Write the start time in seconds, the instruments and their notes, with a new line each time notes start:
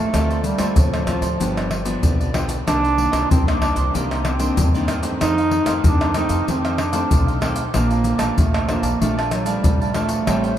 Already playing: nylon-string guitar F3, bass clarinet A3, cavaquinho D5 F5 A5
0.14 upright bass D2, nylon-string guitar D3 A3 C4 F4, cavaquinho F4 A4 C5 D5, pandeiro, tamborim, maracas, surdo
0.30 cavaquinho A4 C5 D5, pandeiro, maracas
0.43 bass clarinet G3, muted cavaquinho stroke, pandeiro, maracas
0.58 upright bass D2, nylon-string guitar A3 C4 F4, cavaquinho A4 C5 D5, pandeiro, tamborim, maracas
0.76 upright bass D2, nylon-string guitar A2, bass clarinet F3, pandeiro, maracas, surdo
0.93 cavaquinho A4 C5 D5, pandeiro, tamborim, maracas
1.07 nylon-string guitar A3 C4 F4, cavaquinho F4 A4 C5 D5, pandeiro, tamborim, maracas, surdo
1.21 upright bass D2, cavaquinho A4 C5 D5, pandeiro, maracas
1.40 upright bass G1, nylon-string guitar G2 F3 B3 D4, cavaquinho F4 G4 B4 D5, pandeiro, maracas, surdo
1.57 cavaquinho G4 B4 D5, pandeiro, tamborim, maracas
1.71 muted cavaquinho stroke, pandeiro, tamborim
1.85 nylon-string guitar F3 B3 D4, cavaquinho G4 B4 D5, pandeiro, maracas
2.03 upright bass B1, nylon-string guitar D3, pandeiro, maracas, surdo
2.20 cavaquinho G4 B4 D5, pandeiro, maracas
2.33 nylon-string guitar F3 B3 D4, cavaquinho F4 G4 B4 D5, pandeiro, tamborim
2.49 cavaquinho G4 B4 D5, pandeiro, maracas
2.67 upright bass C2, nylon-string guitar C3 D#3 A#3 D4, bass clarinet D4, cavaquinho D#4 A#4 C5 D#5, pandeiro, tamborim, maracas, surdo
2.83 cavaquinho A#4 C5 D#5, pandeiro, maracas
2.97 nylon-string guitar D#3 A#3 D4, muted cavaquinho stroke, pandeiro
3.12 upright bass C2, cavaquinho A#4 C5 D#5, pandeiro, tamborim, maracas
3.30 upright bass C2, nylon-string guitar G2, bass clarinet C4, pandeiro, maracas, surdo
3.47 nylon-string guitar D#3 A#3 D4, cavaquinho A#4 C5 D#5, pandeiro, tamborim, maracas
3.61 bass clarinet D4, cavaquinho D#4 A#4 C5 D#5, pandeiro, tamborim
3.75 upright bass C2, cavaquinho A#4 C5 D#5, pandeiro, maracas
3.94 upright bass C2, nylon-string guitar C3 D#3 A#3 D4, bass clarinet A#3, cavaquinho D#4 A#4 C5 D#5, pandeiro, maracas, surdo
4.11 cavaquinho A#4 C5 D#5, pandeiro, tamborim, maracas
4.25 bass clarinet C4, muted cavaquinho stroke, pandeiro, tamborim
4.39 nylon-string guitar D#3 A#3 D4, cavaquinho A#4 C5 D#5, pandeiro, maracas
4.57 upright bass E2, nylon-string guitar G2, pandeiro, maracas, surdo
4.74 nylon-string guitar D#3 A#3 D4, cavaquinho A#4 C5 D#5, pandeiro, maracas
4.88 cavaquinho D#4 A#4 C5 D#5, pandeiro, tamborim, maracas
5.03 nylon-string guitar D#3 A3 C4, cavaquinho A#4 C5 D#5, pandeiro, maracas
5.21 upright bass F2, nylon-string guitar F2, cavaquinho D#4 A4 C5 F5, bass clarinet D#4, pandeiro, tamborim, maracas, surdo
5.38 cavaquinho A4 C5 F5, pandeiro, maracas
5.51 muted cavaquinho stroke, pandeiro
5.66 upright bass F2, nylon-string guitar D#3 A3 C4, cavaquinho A4 C5 F5, pandeiro, tamborim, maracas
5.84 upright bass F2, nylon-string guitar C3, bass clarinet D4, pandeiro, maracas, surdo
6.01 cavaquinho A4 C5 F5, pandeiro, tamborim, maracas
6.14 nylon-string guitar D#3 A3 C4, cavaquinho D#4 A4 C5 F5, bass clarinet D#4, pandeiro, tamborim, maracas
6.29 upright bass F2, cavaquinho A4 C5 F5, pandeiro, maracas
6.47 nylon-string guitar F2 D#3 A3 C4, upright bass F2, bass clarinet C4, cavaquinho D#4 A4 C5 F5, pandeiro, maracas, surdo
6.65 cavaquinho A4 C5 F5, pandeiro, tamborim, maracas
6.78 bass clarinet D4, muted cavaquinho stroke, pandeiro, tamborim
6.92 nylon-string guitar D#3 A3 C4, cavaquinho A4 C5 F5, pandeiro, maracas
7.11 upright bass B1, pandeiro, maracas, surdo
7.27 cavaquinho A4 C5 F5, pandeiro, maracas
7.41 nylon-string guitar D#3 A3 C4, cavaquinho D#4 A4 C5 F5, pandeiro, tamborim
7.55 cavaquinho A4 C5 F5, pandeiro, maracas
7.74 upright bass A#1, nylon-string guitar A#2 F3 D4, bass clarinet A#3, cavaquinho A#4 D5 F5 A5, pandeiro, tamborim, maracas, surdo
7.91 cavaquinho D5 F5 A5, pandeiro, maracas
8.04 muted cavaquinho stroke, pandeiro, maracas
8.18 upright bass A#1, nylon-string guitar F3 A3 D4, cavaquinho D5 F5 A5, pandeiro, tamborim, maracas
8.37 upright bass A#1, nylon-string guitar F2, bass clarinet A3, pandeiro, maracas, surdo
8.53 cavaquinho D5 F5 A5, pandeiro, tamborim, maracas
8.67 nylon-string guitar F3 A3 D4, bass clarinet A#3, cavaquinho A#4 D5 F5 A5, pandeiro, tamborim
8.82 upright bass A#1, cavaquinho D5 F5 A5, pandeiro, maracas
9.01 upright bass A#1, nylon-string guitar A#2 F3 A3 D4, bass clarinet A3, cavaquinho A#4 D5 F5 A5, pandeiro, maracas, surdo
9.18 cavaquinho D5 F5 A5, pandeiro, tamborim, maracas
9.31 bass clarinet F#3, muted cavaquinho stroke, pandeiro, tamborim, maracas
9.45 nylon-string guitar F3 A3 D4, bass clarinet G3, cavaquinho D5 F5 A5, pandeiro, maracas
9.64 upright bass A#1, nylon-string guitar F2, pandeiro, maracas, surdo
9.81 cavaquinho D5 F5 A5, pandeiro, maracas
9.94 nylon-string guitar F3 A3 D4, bass clarinet A3, cavaquinho A#4 D5 F5 A5, pandeiro, tamborim
10.09 cavaquinho D5 F5 A5, pandeiro, maracas
10.26 upright bass A1, nylon-string guitar A2 G3 C4 E4, cavaquinho A4 C5 E5 G5, pandeiro, tamborim, maracas, surdo
10.43 cavaquinho C5 E5 G5, pandeiro, maracas